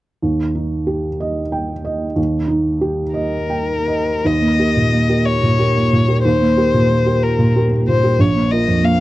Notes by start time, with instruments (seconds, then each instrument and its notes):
0.22 felt piano D#2
0.55 felt piano D#4
0.87 felt piano G4
1.20 felt piano D#5
1.52 felt piano G5
1.85 felt piano D#5
2.16 felt piano D#2
2.48 felt piano D#4
2.81 felt piano G4
3.14 violin A#4, felt piano D#5
3.50 felt piano G5
3.88 felt piano D#5
4.25 felt piano D#2, violin D#5
4.42 felt piano A#3
4.59 felt piano G4 A#4
4.77 felt piano A#2
4.93 felt piano A#3
5.09 felt piano G4 A#4
5.26 violin C#5
5.43 felt piano A#2
5.59 felt piano G4 A#4
5.76 felt piano A#3
5.93 felt piano A#2
6.08 felt piano G4 A#4
6.25 felt piano D#2, violin C5
6.41 felt piano A#3
6.57 felt piano G4 A#4
6.74 felt piano A#2
6.90 felt piano A#3
7.06 felt piano G4 A#4
7.23 violin A#4
7.39 felt piano A#2
7.56 felt piano G4 A#4
7.71 felt piano A#3
7.88 felt piano A#2, violin C5
8.04 felt piano G4 A#4
8.19 felt piano A#1, violin C#5
8.35 felt piano A#3
8.51 felt piano F4 A#4, violin D#5
8.67 felt piano F2
8.83 felt piano A#3, violin F5